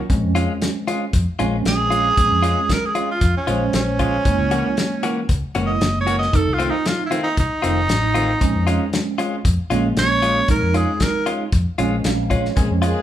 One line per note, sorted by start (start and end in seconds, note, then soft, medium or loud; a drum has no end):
0.10 0.21 A#1 medium
0.10 1.06 G#3 medium
0.10 1.06 C4 medium
0.10 1.07 C#4 medium
0.10 kick loud
0.10 closed hi-hat medium
0.23 0.45 F2 medium
0.35 0.52 G#3 medium
0.35 0.52 C#4 medium
0.35 0.51 F4 medium
0.35 closed hi-hat medium
0.62 snare loud
0.62 closed hi-hat medium
0.88 1.04 G#3 medium
0.88 1.04 C#4 medium
0.88 1.04 F4 medium
0.88 closed hi-hat medium
1.13 1.25 F2 medium
1.13 kick loud
1.13 closed hi-hat medium
1.27 muted fingered electric bass stroke soft
1.39 1.62 A#1 medium
1.39 2.12 G#3 medium
1.39 1.56 G#3 medium
1.39 2.12 C4 medium
1.39 1.56 C#4 medium
1.39 2.12 C#4 medium
1.39 1.55 F4 medium
1.39 closed hi-hat medium
1.65 2.10 A#1 medium
1.65 2.74 G#4 loud
1.65 snare loud
1.65 closed hi-hat medium
1.90 2.08 G#3 soft
1.90 2.08 C#4 medium
1.90 2.07 F4 medium
1.90 closed hi-hat medium
2.17 2.29 A#1 medium
2.17 3.14 G#3 medium
2.17 3.14 C4 medium
2.17 3.14 C#4 medium
2.17 kick loud
2.17 closed hi-hat medium
2.31 2.53 F2 medium
2.42 2.60 G#3 medium
2.42 2.59 C#4 medium
2.42 2.59 F4 medium
2.42 closed hi-hat medium
2.69 2.87 A#4 medium
2.69 kick medium
2.69 snare loud
2.69 closed hi-hat medium
2.86 3.10 G#4 medium
2.95 3.12 G#3 soft
2.95 3.12 C#4 medium
2.95 3.11 F4 medium
2.95 closed hi-hat medium
3.11 3.35 F4 medium
3.21 3.33 F2 medium
3.21 kick loud
3.21 closed hi-hat medium
3.36 3.73 C#4 medium
3.36 muted fingered electric bass stroke soft
3.47 3.69 A#1 medium
3.47 4.20 G#3 medium
3.47 3.64 G#3 medium
3.47 4.20 C#4 medium
3.47 3.64 C#4 medium
3.47 3.63 F4 medium
3.47 4.20 C5 medium
3.47 closed hi-hat medium
3.73 4.17 A#1 medium
3.73 5.26 C#4 medium
3.73 snare loud
3.73 closed hi-hat medium
3.99 4.16 G#3 soft
3.99 4.16 C#4 soft
3.99 4.15 F4 medium
3.99 kick medium
3.99 closed hi-hat medium
4.25 4.37 F#1 medium
4.25 5.22 G#3 medium
4.25 5.22 A#3 medium
4.25 5.22 E4 medium
4.25 kick loud
4.25 closed hi-hat medium
4.39 4.61 C#2 medium
4.51 4.68 E3 medium
4.51 4.68 A#3 medium
4.51 4.68 C#4 medium
4.51 4.67 F#4 medium
4.51 closed hi-hat medium
4.77 snare loud
4.77 closed hi-hat medium
5.03 5.20 E3 medium
5.03 5.20 A#3 medium
5.03 5.20 C#4 medium
5.03 5.19 F#4 medium
5.03 closed hi-hat soft
5.29 5.41 C#2 medium
5.29 kick loud
5.29 closed hi-hat medium
5.43 muted fingered electric bass stroke soft
5.55 5.78 F#1 medium
5.55 5.72 E3 medium
5.55 6.28 G#3 medium
5.55 6.28 A#3 medium
5.55 5.72 A#3 medium
5.55 5.71 C#4 medium
5.55 6.28 E4 medium
5.55 5.71 F#4 medium
5.55 closed hi-hat medium
5.66 5.99 D#5 medium
5.81 6.26 F#1 medium
5.81 snare loud
5.81 closed hi-hat medium
6.01 6.16 C#5 medium
6.07 6.24 E3 soft
6.07 6.23 A#3 medium
6.07 6.23 C#4 medium
6.07 6.23 F#4 soft
6.07 closed hi-hat medium
6.19 6.37 D#5 medium
6.19 snare soft
6.33 6.45 F1 medium
6.33 7.30 A3 medium
6.33 7.30 C4 medium
6.33 7.30 D#4 medium
6.33 6.55 A4 medium
6.33 kick loud
6.33 closed hi-hat medium
6.48 6.69 C2 medium
6.53 6.72 F4 medium
6.59 6.76 D#3 medium
6.59 6.75 A3 medium
6.59 6.75 C4 medium
6.59 6.75 F4 medium
6.59 closed hi-hat medium
6.70 6.90 D#4 medium
6.86 7.03 F4 medium
6.86 snare loud
6.86 closed hi-hat medium
7.06 7.21 E4 medium
7.11 7.28 D#3 medium
7.11 7.28 A3 medium
7.11 7.27 C4 medium
7.11 7.27 F4 medium
7.11 closed hi-hat medium
7.23 7.38 D#4 medium
7.37 7.49 C2 medium
7.37 8.90 D#4 loud
7.37 kick loud
7.37 closed hi-hat medium
7.51 muted fingered electric bass stroke soft
7.62 7.90 F1 loud
7.62 7.80 D#3 medium
7.62 8.36 A3 medium
7.62 7.79 A3 medium
7.62 7.79 C4 medium
7.62 8.36 C4 medium
7.62 8.36 D#4 medium
7.62 7.79 F4 medium
7.62 closed hi-hat medium
7.89 8.34 A1 medium
7.89 snare loud
7.89 closed hi-hat medium
8.14 8.31 D#3 medium
8.14 8.31 A3 medium
8.14 8.31 C4 medium
8.14 8.31 F4 medium
8.14 closed hi-hat medium
8.41 8.53 A#1 medium
8.41 9.38 G#3 medium
8.41 9.38 C4 medium
8.41 9.38 C#4 medium
8.41 kick medium
8.41 closed hi-hat medium
8.55 8.77 F2 medium
8.67 8.84 G#3 medium
8.67 8.83 C#4 medium
8.67 8.83 F4 medium
8.67 closed hi-hat medium
8.93 snare loud
8.93 closed hi-hat medium
9.18 9.36 G#3 medium
9.18 9.35 C#4 medium
9.18 9.35 F4 medium
9.18 closed hi-hat medium
9.45 9.57 F2 medium
9.45 kick loud
9.45 closed hi-hat medium
9.58 muted fingered electric bass stroke soft
9.70 9.93 A#1 medium
9.70 10.44 G#3 medium
9.70 9.87 G#3 medium
9.70 10.44 A#3 medium
9.70 9.87 C#4 medium
9.70 10.44 C#4 medium
9.70 9.87 F4 medium
9.70 closed hi-hat medium
9.96 10.41 A#1 medium
9.96 10.48 C#5 loud
9.96 snare loud
9.96 closed hi-hat medium
10.22 10.39 G#3 medium
10.22 10.39 C#4 medium
10.22 10.39 F4 medium
10.22 closed hi-hat medium
10.48 10.60 A#1 medium
10.48 11.46 G#3 medium
10.48 11.46 C4 medium
10.48 11.46 D#4 medium
10.48 10.78 A#4 medium
10.48 kick loud
10.48 closed hi-hat medium
10.62 10.84 F2 medium
10.74 10.91 G#3 soft
10.74 10.91 C#4 medium
10.74 10.91 F4 medium
10.74 11.04 G#4 medium
10.74 closed hi-hat medium
11.00 11.27 A#4 medium
11.00 kick medium
11.00 snare loud
11.00 closed hi-hat medium
11.26 11.43 G#3 soft
11.26 11.43 C#4 medium
11.26 11.43 F4 medium
11.26 closed hi-hat medium
11.52 11.64 F2 medium
11.52 kick loud
11.52 closed hi-hat medium
11.66 muted fingered electric bass stroke soft
11.78 12.01 A#1 medium
11.78 12.51 G#3 medium
11.78 11.95 G#3 medium
11.78 12.51 C4 medium
11.78 11.95 C#4 medium
11.78 12.52 C#4 medium
11.78 11.95 F4 medium
11.78 closed hi-hat medium
12.04 12.49 A#1 medium
12.04 12.29 F5 medium
12.04 snare loud
12.04 closed hi-hat medium
12.30 12.47 G#3 medium
12.30 12.47 C#4 medium
12.30 12.47 F4 medium
12.30 12.55 C#5 medium
12.30 kick medium
12.30 closed hi-hat medium
12.45 snare soft
12.55 12.68 A#1 medium
12.55 12.70 G#3 medium
12.55 13.02 G#3 medium
12.55 12.69 A#3 medium
12.55 13.02 C4 medium
12.55 12.70 C#4 medium
12.55 13.02 C#4 medium
12.55 12.70 G#4 medium
12.55 kick loud
12.55 closed hi-hat medium
12.70 12.92 F2 medium
12.82 12.99 G#3 medium
12.82 13.02 G#3 medium
12.82 13.02 A#3 medium
12.82 12.99 C#4 medium
12.82 12.98 F4 medium
12.82 13.02 G#4 medium
12.82 closed hi-hat medium